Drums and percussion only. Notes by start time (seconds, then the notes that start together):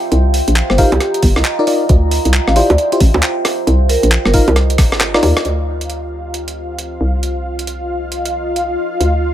0.12 closed hi-hat
0.34 open hi-hat
0.48 closed hi-hat
0.56 clap, closed hi-hat
0.70 cross-stick
0.78 kick, open hi-hat
0.92 closed hi-hat, high bongo
1.00 cross-stick, closed hi-hat
1.14 closed hi-hat
1.23 kick, open hi-hat
1.36 cross-stick
1.45 clap, closed hi-hat
1.67 open hi-hat
1.89 kick, closed hi-hat
2.11 open hi-hat
2.25 closed hi-hat
2.34 clap, closed hi-hat
2.48 cross-stick
2.56 open hi-hat
2.70 closed hi-hat, high bongo
2.78 closed hi-hat
2.92 closed hi-hat
3.00 kick, open hi-hat
3.14 high bongo
3.23 clap, closed hi-hat
3.45 cross-stick, open hi-hat
3.67 closed hi-hat
3.89 open hi-hat
4.03 closed hi-hat
4.12 clap, closed hi-hat
4.25 cross-stick
4.34 kick, open hi-hat
4.48 closed hi-hat, high bongo
4.56 cross-stick, closed hi-hat
4.70 closed hi-hat
4.78 kick, cross-stick, open hi-hat
4.92 cross-stick
5.01 cross-stick, clap, closed hi-hat
5.14 cross-stick
5.23 open hi-hat, high bongo
5.37 cross-stick, closed hi-hat
5.45 closed hi-hat
5.81 closed hi-hat
5.90 closed hi-hat
6.34 closed hi-hat
6.48 closed hi-hat
6.79 closed hi-hat
7.23 closed hi-hat
7.59 closed hi-hat
7.67 closed hi-hat
8.12 closed hi-hat
8.25 closed hi-hat
8.56 closed hi-hat
9.01 closed hi-hat